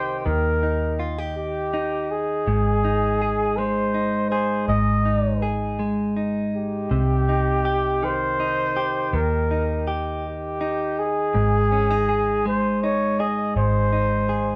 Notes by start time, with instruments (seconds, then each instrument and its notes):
Already playing: fingered electric bass C2, clean electric guitar C3 D#3 D#4 G4, flugelhorn C5
0.19 flugelhorn C5
0.25 fingered electric bass D#2, clean electric guitar D#3, flugelhorn A#4
0.63 clean electric guitar D#4
0.99 clean electric guitar F4
1.18 clean electric guitar G4
1.36 flugelhorn G4
1.74 clean electric guitar D#4
2.11 flugelhorn G#4
2.47 fingered electric bass G#1, clean electric guitar G#2
2.84 clean electric guitar D#4
3.22 clean electric guitar G#4
3.58 clean electric guitar G#3, flugelhorn C5
3.94 clean electric guitar D#4
4.30 clean electric guitar G#4, flugelhorn C5
4.68 fingered electric bass G#1, clean electric guitar G#2, flugelhorn D#5
5.05 clean electric guitar D#4
5.42 clean electric guitar G#4
5.79 clean electric guitar G#3
6.17 clean electric guitar D#4
6.56 flugelhorn G4
6.91 fingered electric bass C2, clean electric guitar C3
7.29 clean electric guitar D#4
7.65 clean electric guitar G4
8.03 clean electric guitar D#3, flugelhorn C5
8.40 clean electric guitar D#4
8.76 clean electric guitar G4
9.13 fingered electric bass D#2, clean electric guitar D#3, flugelhorn A#4
9.51 clean electric guitar D#4
9.87 clean electric guitar G4
10.26 flugelhorn G4
10.61 clean electric guitar D#4
10.99 flugelhorn G#4
11.34 fingered electric bass G#1, clean electric guitar G#2
11.72 clean electric guitar C#4
11.91 clean electric guitar D#4
12.09 clean electric guitar G#4
12.46 clean electric guitar G#3, flugelhorn C5
12.84 clean electric guitar D#4, flugelhorn C#5
13.20 clean electric guitar G#4, flugelhorn D#5
13.56 fingered electric bass G#1, clean electric guitar G#2, flugelhorn C5
13.93 clean electric guitar D#4
14.29 clean electric guitar G#4